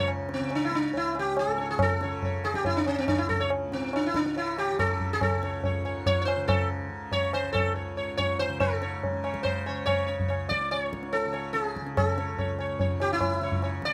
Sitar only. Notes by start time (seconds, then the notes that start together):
0.34 C4
0.55 D4
0.65 E4
0.75 D4
0.97 E4
1.19 G4
1.39 A4
1.60 C#5
1.71 G#4
1.82 A4
2.02 C#5
2.25 C#5
2.45 G#4
2.55 G4
2.66 E4
2.77 D4
2.87 C#4
2.98 C4
3.08 D4
3.18 E4
3.29 A4
3.40 C#5
3.73 C4
3.96 D4
4.07 E4
4.16 D4
4.38 E4
4.58 G4
4.79 A4
5.13 G#4
5.23 A4
5.44 C#5
5.65 C#5
5.85 C#5
6.07 C#5
6.22 C5 C#5
6.48 A4
7.12 C#5
7.34 C5
7.53 A4
7.76 C#5
7.97 C#5
8.17 C#5
8.39 C5
8.60 A4 C#5
8.82 C#5
9.24 C#5
9.43 C5
9.66 C#5
9.86 C#5
10.07 C#5
10.28 C#5
10.49 D5
10.71 C#5
11.13 A4
11.33 C#5
11.53 G#4
11.97 A4
12.18 C#5
12.38 C#5
12.60 C#5
12.81 C#5
13.01 G4
13.13 E4
13.43 C#5
13.64 C#5
13.85 D5